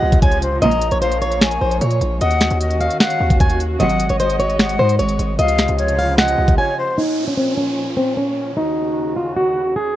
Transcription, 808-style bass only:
0.02 0.60 C#2 loud
0.62 0.91 A#1 loud
0.92 1.59 A#1 loud
1.61 1.81 A#1 loud
1.81 2.00 A#2 loud
2.01 2.20 A#1 loud
2.21 2.50 D#2 loud
2.51 2.89 D#2 loud
3.20 3.78 D#2 loud
3.80 4.09 G#1 loud
4.10 4.76 G#1 loud
4.79 4.98 G#2 loud
4.99 5.18 G#1 loud
5.19 5.38 G#1 loud
5.39 5.68 C#2 loud
5.69 6.35 C#2 loud
6.38 6.57 C#2 loud

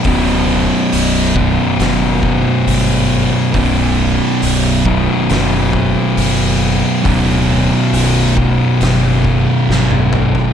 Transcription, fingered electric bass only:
0.05 0.69 D1 loud
0.92 1.56 B0 medium
1.79 2.43 F#1 medium
2.66 3.30 G1 loud
3.54 4.18 B0 medium
4.42 5.06 B0 medium
5.30 5.94 F#1 medium
6.17 6.81 F#1 medium
7.06 7.69 D1 loud
7.93 8.57 B0 medium
8.81 9.45 F#1 medium
9.69 10.33 G1 medium

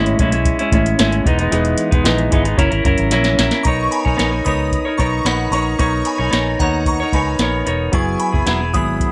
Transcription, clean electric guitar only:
0.00 0.18 A2 medium
0.00 0.19 G#3 loud
0.00 0.19 C#4 loud
0.00 0.20 E4 loud
0.19 0.32 A2 medium
0.19 0.33 G#3 medium
0.19 0.32 C#4 medium
0.19 0.30 E4 medium
0.32 0.60 G#3 medium
0.32 0.59 C#4 medium
0.32 0.58 E4 medium
0.59 0.72 G#3 medium
0.59 0.73 C#4 medium
0.59 0.72 E4 medium
0.72 0.98 A2 medium
0.72 0.98 G#3 medium
0.72 0.99 C#4 medium
0.72 1.00 E4 medium
0.99 1.25 A2 medium
0.99 1.24 G#3 medium
0.99 1.26 C#4 medium
0.99 1.27 E4 loud
1.25 1.38 E3 medium
1.25 1.39 G#3 medium
1.25 1.39 B3 medium
1.25 1.38 D#4 medium
1.39 1.51 G#3 medium
1.39 1.51 B3 medium
1.39 1.51 D#4 medium
1.51 1.92 E3 medium
1.51 1.92 G#3 medium
1.51 1.91 B3 medium
1.51 1.90 D#4 loud
1.91 2.04 G#3 medium
1.91 2.04 B3 medium
1.91 2.05 D#4 medium
2.04 2.29 E3 medium
2.04 2.31 G#3 medium
2.04 2.31 B3 loud
2.04 2.32 D#4 loud
2.31 2.45 E3 medium
2.31 2.46 G#3 medium
2.31 2.45 B3 medium
2.31 2.44 D#4 medium
2.45 2.57 G#3 soft
2.45 2.58 B3 medium
2.45 2.59 D#4 medium
2.57 2.71 F#3 medium
2.57 2.72 C#4 medium
2.57 2.70 E4 loud
2.57 2.70 A#4 loud
2.71 2.84 C#4 soft
2.71 2.85 E4 medium
2.71 2.85 A#4 medium
2.84 3.11 F#3 medium
2.84 3.11 C#4 medium
2.84 3.11 E4 medium
2.84 3.13 A#4 medium
3.12 3.37 F#3 medium
3.12 3.38 C#4 medium
3.12 3.39 E4 medium
3.12 3.39 A#4 medium
3.38 3.52 F#3 medium
3.38 3.53 C#4 medium
3.38 3.53 E4 medium
3.38 3.51 A#4 medium
3.53 3.66 C#4 soft
3.53 3.66 E4 medium
3.53 3.66 A#4 medium
3.66 4.06 B3 medium
3.66 4.06 D#4 medium
3.66 4.05 A#4 medium
3.66 4.04 C#5 medium
4.05 4.17 D#4 soft
4.05 4.17 A#4 soft
4.05 4.18 C#5 soft
4.17 4.31 B3 medium
4.17 4.32 D#4 medium
4.17 4.31 A#4 medium
4.17 4.30 C#5 medium
4.31 4.45 D#4 soft
4.31 4.46 A#4 soft
4.31 4.45 C#5 soft
4.45 4.86 B3 soft
4.45 4.86 D#4 medium
4.45 4.85 A#4 medium
4.45 4.84 C#5 medium
4.85 4.98 D#4 soft
4.85 4.99 A#4 soft
4.85 4.99 C#5 soft
4.98 5.24 B3 medium
4.98 5.24 D#4 medium
4.98 5.25 A#4 medium
4.98 5.25 C#5 medium
5.25 5.51 B3 medium
5.25 5.52 D#4 medium
5.25 5.52 A#4 medium
5.25 5.53 C#5 medium
5.52 5.78 B3 medium
5.52 5.78 D#4 medium
5.52 5.78 A#4 medium
5.52 5.79 C#5 medium
5.79 6.19 B3 medium
5.79 6.20 D#4 medium
5.79 6.19 A#4 medium
5.79 6.17 C#5 medium
6.18 6.31 D#4 soft
6.18 6.32 A#4 medium
6.18 6.32 C#5 soft
6.31 6.59 B3 medium
6.31 6.60 D#4 medium
6.31 6.60 A#4 medium
6.31 6.60 C#5 medium
6.60 7.00 B3 medium
6.60 7.01 D#4 medium
6.60 7.01 A#4 medium
6.60 6.99 C#5 medium
7.00 7.13 D#4 soft
7.00 7.14 A#4 soft
7.00 7.13 C#5 medium
7.14 7.39 B3 medium
7.14 7.39 D#4 medium
7.14 7.40 A#4 medium
7.14 7.41 C#5 medium
7.40 7.64 B3 medium
7.40 7.65 D#4 medium
7.40 7.66 A#4 medium
7.40 7.67 C#5 medium
7.65 7.92 B3 soft
7.65 7.93 D#4 soft
7.65 7.94 A#4 medium
7.65 7.94 C#5 medium
7.92 8.33 F#3 medium
7.92 8.34 B3 medium
7.92 8.33 E4 medium
7.92 8.31 G#4 medium
8.32 8.45 B3 soft
8.32 8.46 E4 medium
8.32 8.47 G#4 medium
8.46 8.60 F#3 medium
8.46 8.60 B3 medium
8.46 8.61 E4 medium
8.46 8.59 G#4 medium
8.60 8.73 B3 soft
8.60 8.74 E4 soft
8.60 8.74 G#4 medium
8.73 9.12 F#3 medium
8.73 9.12 B3 medium
8.73 9.12 E4 medium
8.73 9.12 G#4 medium

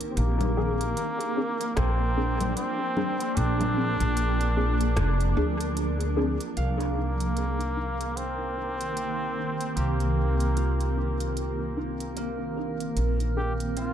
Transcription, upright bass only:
0.17 0.94 A#1 loud
1.77 2.54 A#1 medium
3.37 3.96 A#1 medium
4.01 4.96 A#1 medium
4.97 5.33 F1 loud
5.37 6.36 D2 medium
6.57 9.74 C2 medium
9.77 12.94 C2 medium
12.97 13.93 A#1 medium

